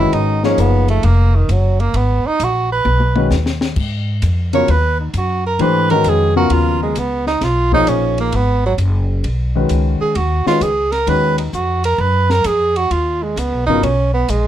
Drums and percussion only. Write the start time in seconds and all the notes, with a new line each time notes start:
0.13 ride
0.43 snare
0.58 hi-hat pedal, ride
0.88 ride
1.03 ride
1.49 hi-hat pedal, ride
1.80 ride
1.94 ride
2.40 hi-hat pedal, ride
2.85 high tom
3.00 high tom
3.16 high tom
3.31 snare, hi-hat pedal
3.46 snare
3.61 snare
3.76 kick, crash
4.22 hi-hat pedal, ride
4.53 ride
4.68 ride
5.14 hi-hat pedal, ride
5.59 ride
5.90 ride
6.04 hi-hat pedal, ride
6.50 ride
6.95 hi-hat pedal, ride
7.27 snare
7.41 snare, ride
7.72 kick
7.87 hi-hat pedal, ride
8.18 ride
8.32 ride
8.78 hi-hat pedal, ride
9.24 ride
9.69 hi-hat pedal, ride
10.15 ride
10.46 snare
10.61 hi-hat pedal, ride
10.92 snare, ride
11.07 ride
11.38 ride
11.53 hi-hat pedal
11.84 ride
12.30 snare
12.44 hi-hat pedal, ride
12.76 ride
12.91 ride
13.37 hi-hat pedal, ride
13.83 ride
14.28 hi-hat pedal, ride